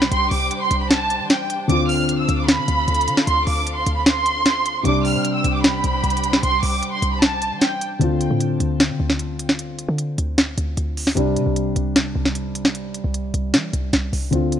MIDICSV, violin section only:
0, 0, Header, 1, 2, 480
1, 0, Start_track
1, 0, Tempo, 394737
1, 141, Time_signature, 4, 2, 24, 8
1, 17749, End_track
2, 0, Start_track
2, 0, Title_t, "Violin section"
2, 0, Program_c, 0, 48
2, 146, Note_on_c, 0, 84, 110
2, 340, Note_off_c, 0, 84, 0
2, 382, Note_on_c, 0, 86, 86
2, 720, Note_off_c, 0, 86, 0
2, 743, Note_on_c, 0, 84, 87
2, 939, Note_off_c, 0, 84, 0
2, 982, Note_on_c, 0, 83, 85
2, 1080, Note_off_c, 0, 83, 0
2, 1100, Note_on_c, 0, 81, 94
2, 1552, Note_off_c, 0, 81, 0
2, 1580, Note_on_c, 0, 79, 85
2, 1777, Note_off_c, 0, 79, 0
2, 2060, Note_on_c, 0, 86, 105
2, 2257, Note_off_c, 0, 86, 0
2, 2301, Note_on_c, 0, 89, 81
2, 2639, Note_off_c, 0, 89, 0
2, 2662, Note_on_c, 0, 88, 79
2, 2859, Note_off_c, 0, 88, 0
2, 2900, Note_on_c, 0, 86, 81
2, 2999, Note_off_c, 0, 86, 0
2, 3016, Note_on_c, 0, 83, 102
2, 3930, Note_off_c, 0, 83, 0
2, 3977, Note_on_c, 0, 84, 109
2, 4175, Note_off_c, 0, 84, 0
2, 4220, Note_on_c, 0, 86, 91
2, 4559, Note_off_c, 0, 86, 0
2, 4578, Note_on_c, 0, 84, 79
2, 4776, Note_off_c, 0, 84, 0
2, 4818, Note_on_c, 0, 83, 76
2, 4917, Note_off_c, 0, 83, 0
2, 4941, Note_on_c, 0, 84, 113
2, 5852, Note_off_c, 0, 84, 0
2, 5899, Note_on_c, 0, 86, 102
2, 6096, Note_off_c, 0, 86, 0
2, 6140, Note_on_c, 0, 89, 85
2, 6479, Note_off_c, 0, 89, 0
2, 6500, Note_on_c, 0, 88, 83
2, 6697, Note_off_c, 0, 88, 0
2, 6742, Note_on_c, 0, 86, 83
2, 6840, Note_off_c, 0, 86, 0
2, 6857, Note_on_c, 0, 83, 87
2, 7770, Note_off_c, 0, 83, 0
2, 7825, Note_on_c, 0, 84, 111
2, 8020, Note_off_c, 0, 84, 0
2, 8061, Note_on_c, 0, 86, 87
2, 8400, Note_off_c, 0, 86, 0
2, 8422, Note_on_c, 0, 84, 92
2, 8618, Note_off_c, 0, 84, 0
2, 8661, Note_on_c, 0, 83, 84
2, 8760, Note_off_c, 0, 83, 0
2, 8782, Note_on_c, 0, 81, 91
2, 9233, Note_off_c, 0, 81, 0
2, 9261, Note_on_c, 0, 79, 85
2, 9458, Note_off_c, 0, 79, 0
2, 17749, End_track
0, 0, End_of_file